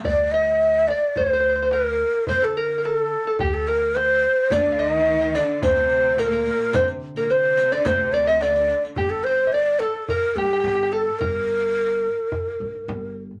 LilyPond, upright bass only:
\new Staff \with { instrumentName = "Upright bass" } { \clef bass \time 4/4 \tempo 4 = 108 d,2 d,2 | d2 d,2 | d,2 d,2 | d2 d,2 |
g,,2 r8 g,8 g,,4 | g,,2 r8 g,8 g,,4 | }